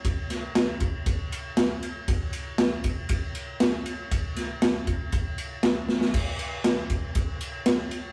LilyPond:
\new DrumStaff \with { instrumentName = "Drums" } \drummode { \time 4/4 \tempo 4 = 118 <bd cymr>8 <cymr sn>8 <cymr sn>8 <bd cymr>8 <bd cymr>8 cymr8 <cymr sn>8 cymr8 | <bd cymr>8 cymr8 <cymr sn>8 <bd cymr>8 <bd cymr>8 cymr8 <cymr sn>8 cymr8 | <bd cymr>8 <cymr sn>8 <cymr sn>8 <bd cymr>8 <bd cymr>8 cymr8 <cymr sn>8 sn16 sn16 | <cymc bd cymr>8 cymr8 <cymr sn>8 <bd cymr>8 <bd cymr>8 cymr8 <cymr sn>8 cymr8 | }